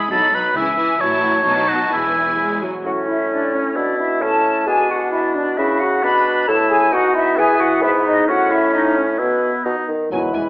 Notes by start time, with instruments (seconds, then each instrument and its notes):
Already playing: viola section G#3, violin section E4 B5, oboe G#4
0.11 double bass section B1, cello section B2, viola section F#3, violin section D#4 B5, oboe A4
0.33 viola section F#3, violin section D#4 B5, oboe B4
0.56 double bass section C#2, cello section C#3, viola section E3, violin section E4 G#5, oboe E5
0.77 viola section E3, violin section E4 G#5
1.01 double bass section A1, cello section A2, viola section F#3, violin section E4 A5, oboe C#5
1.44 double bass section B1, cello section B2, viola section F#3, violin section D#4 A5
1.69 oboe F#4
1.91 double bass section E1, cello section E2, viola section E3, violin section E4 G#5, oboe E4
2.39 viola section G#3
2.62 viola section F#3
2.84 bassoon A2, oboe C#4, clarinet F#4, flute section F#5
3.08 clarinet E4, flute section E5
3.31 clarinet D4, flute section D5
3.54 clarinet C#4, flute section C#5
3.76 bassoon B2, clarinet D4, oboe E4, flute section D5
3.99 clarinet E4, flute section E5
4.21 bassoon A2, oboe C#4, clarinet A4, flute section A5
4.66 bassoon B2, oboe D4, clarinet G#4, flute section G#5
4.90 clarinet F#4, flute section F#5
5.12 clarinet E4, flute section E5
5.34 clarinet D4, flute section D5
5.57 bassoon C#3, clarinet E4, oboe F#4, flute section E5
5.79 clarinet F#4, flute section F#5
6.02 bassoon B2, oboe D4, clarinet B4, flute section B5
6.48 bassoon A2, oboe E4, clarinet A4, flute section A5
6.70 clarinet G#4, flute section G#5
6.92 bassoon B2, oboe D#4, clarinet F#4, flute section F#5
7.15 clarinet E4, flute section E5
7.37 bassoon E3, oboe B3, clarinet G#4, flute section G#5
7.59 clarinet F#4, flute section F#5
7.82 bassoon G#2, oboe B3, clarinet E4, flute section E5
8.05 clarinet D#4, flute section D#5
8.27 bassoon A2, oboe C#4, clarinet F#4, flute section F#5
8.51 clarinet E4, flute section E5
8.73 clarinet D#4, flute section D#5
8.95 clarinet C#4, flute section C#5
9.19 bassoon B2, clarinet B3, oboe E4, flute section B4
9.65 bassoon B2, oboe D#4
9.88 bassoon D#3
10.12 double bass section E1, timpani E2, cello section E2, bassoon F#3, french horn section G#3 E4, clarinet B4, violin section G#5, flute section B5
10.33 double bass section E1, cello section E2, bassoon E3, violin section G#5